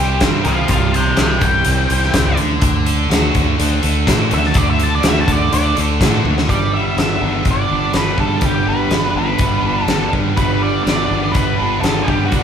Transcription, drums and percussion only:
0.21 kick medium
0.21 snare loud
0.21 closed hi-hat medium
0.45 closed hi-hat medium
0.68 kick loud
0.68 closed hi-hat medium
0.94 closed hi-hat medium
1.17 snare loud
1.17 closed hi-hat medium
1.41 kick loud
1.41 closed hi-hat medium
1.65 closed hi-hat medium
1.90 closed hi-hat medium
2.03 snare soft
2.14 kick medium
2.14 snare loud
2.14 closed hi-hat loud
2.37 closed hi-hat medium
2.62 kick loud
2.62 closed hi-hat loud
2.86 closed hi-hat medium
3.11 snare loud
3.11 closed hi-hat loud
3.35 kick medium
3.35 closed hi-hat medium
3.60 closed hi-hat loud
3.83 closed hi-hat medium
4.07 kick medium
4.07 snare loud
4.07 closed hi-hat loud
4.31 closed hi-hat medium
4.44 snare soft
4.54 kick loud
4.54 closed hi-hat medium
4.79 closed hi-hat medium
5.03 snare loud
5.03 closed hi-hat medium
5.28 kick medium
5.28 closed hi-hat medium
5.53 closed hi-hat medium
5.77 closed hi-hat medium
6.01 kick medium
6.01 snare loud
6.01 closed hi-hat medium
6.25 high tom medium
6.38 snare medium
6.49 kick loud
6.49 closed hi-hat medium
6.98 snare loud
6.98 closed hi-hat medium
7.45 kick loud
7.45 closed hi-hat medium
7.93 snare loud
7.93 closed hi-hat medium
8.18 kick medium
8.41 kick loud
8.41 closed hi-hat medium
8.91 snare loud
8.91 closed hi-hat medium
9.38 kick loud
9.38 closed hi-hat medium
9.88 snare loud
9.88 closed hi-hat medium
10.13 kick medium
10.37 kick loud
10.37 closed hi-hat medium
10.87 snare loud
10.87 closed hi-hat medium
11.35 kick loud
11.35 closed hi-hat medium
11.84 snare loud
11.84 closed hi-hat medium
12.08 kick medium
12.32 kick loud
12.32 closed hi-hat medium

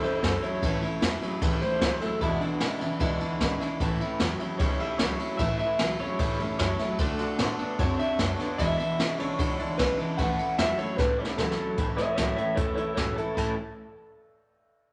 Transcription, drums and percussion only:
0.03 ride medium
0.23 kick medium
0.23 snare loud
0.23 ride medium
0.43 ride medium
0.63 kick loud
0.63 ride medium
0.83 ride medium
1.02 snare loud
1.02 ride medium
1.23 ride medium
1.42 kick loud
1.42 ride medium
1.62 ride medium
1.81 kick medium
1.81 snare loud
1.81 ride medium
2.01 snare soft
2.01 ride medium
2.21 kick loud
2.21 ride medium
2.41 ride medium
2.60 snare loud
2.60 ride medium
2.81 ride medium
3.00 kick loud
3.00 ride medium
3.20 ride medium
3.40 kick medium
3.40 snare loud
3.40 ride medium
3.61 snare soft
3.61 ride medium
3.80 kick loud
3.80 ride medium
4.01 ride medium
4.20 snare loud
4.20 ride medium
4.40 ride medium
4.59 kick loud
4.59 ride medium
4.79 ride medium
4.99 kick medium
4.99 snare loud
4.99 ride medium
5.19 ride medium
5.39 kick loud
5.39 ride medium
5.59 ride medium
5.79 snare loud
5.79 ride medium
5.99 ride medium
6.19 kick loud
6.19 ride loud
6.39 ride medium
6.59 kick medium
6.59 snare loud
6.59 ride medium
6.79 snare soft
6.79 ride medium
6.98 kick loud
6.98 ride medium
7.19 ride medium
7.39 snare loud
7.39 ride medium
7.59 ride medium
7.79 kick loud
7.79 ride medium
7.99 ride medium
8.19 kick medium
8.19 snare loud
8.19 ride medium
8.39 snare soft
8.39 ride medium
8.59 kick loud
8.59 ride medium
8.80 ride medium
9.00 snare loud
9.00 ride medium
9.19 ride medium
9.39 kick loud
9.39 ride loud
9.59 ride medium
9.79 kick medium
9.79 snare loud
9.79 ride loud
9.99 ride medium
10.19 kick loud
10.19 ride medium
10.39 ride medium
10.59 snare loud
10.59 ride medium
10.78 ride medium
10.98 kick loud
10.98 snare medium
11.25 snare medium
11.38 kick medium
11.38 snare medium
11.51 snare medium
11.78 kick loud
11.78 closed hi-hat medium
11.98 snare soft
11.98 closed hi-hat medium
12.18 snare loud
12.18 closed hi-hat medium
12.38 closed hi-hat medium
12.57 kick loud
12.57 closed hi-hat medium
12.77 closed hi-hat medium
12.97 kick medium
12.97 snare loud
12.97 closed hi-hat medium
13.18 closed hi-hat medium
13.37 kick medium
13.37 crash medium

